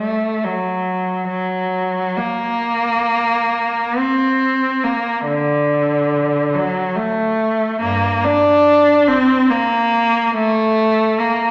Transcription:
0.00 0.43 A3 soft
0.44 1.27 F#3 medium
1.28 2.15 F#3 medium
2.17 3.97 A#3 medium
3.97 4.83 C4 medium
4.84 5.26 A#3 medium
5.27 6.51 D3 medium
6.54 6.95 F#3 medium
6.96 7.81 A3 medium
7.80 8.20 G2 soft
7.80 8.22 A#3 medium
8.24 9.08 D4 medium
9.07 9.50 C4 medium
9.50 10.36 A#3 medium
10.35 11.20 A3 medium
11.20 11.51 A#3 medium

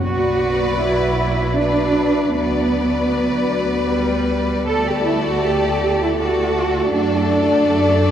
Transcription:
0.01 2.32 B1 medium
0.01 1.56 F#3 medium
0.01 0.78 F#4 medium
0.01 1.57 B4 medium
0.01 1.57 D5 medium
0.82 1.60 E4 medium
1.59 2.35 F#3 soft
1.59 2.36 D4 medium
1.59 2.34 B4 soft
1.59 2.35 D5 soft
2.35 6.90 D2 medium
2.35 3.86 F#3 medium
2.35 4.23 B3 medium
2.35 4.62 B4 medium
2.35 4.62 D5 medium
3.89 4.64 G3 medium
4.66 6.17 A3 medium
4.66 4.84 A4 medium
4.66 6.17 A4 medium
4.66 6.16 D5 medium
4.86 5.05 G4 medium
5.05 5.23 E4 medium
5.24 5.42 F#4 medium
5.43 6.00 G4 medium
6.00 6.19 E4 medium
6.18 6.93 A3 medium
6.18 6.93 F#4 medium
6.18 6.94 A4 soft
6.18 6.92 D5 medium
6.93 8.11 F#2 medium
6.93 8.11 A3 medium
6.93 8.11 D4 medium
6.93 8.11 A4 medium
6.93 8.11 D5 medium

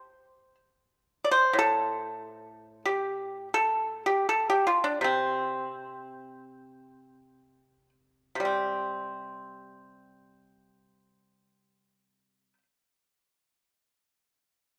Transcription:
0.00 0.55 C5 medium
1.24 1.30 D5 soft
1.31 1.54 C5 medium
1.53 4.81 A2 soft
1.59 2.82 A4 medium
2.85 3.48 G4 medium
3.54 4.03 A4 medium
4.06 4.28 G4 medium
4.29 4.47 A4 medium
4.50 4.65 G4 soft
4.67 4.82 F4 medium
4.84 5.01 D4 soft
5.01 8.34 C3 soft
5.01 7.89 C4 soft
8.35 12.53 C3 soft
8.40 12.58 G3 soft
8.45 12.63 C4 soft

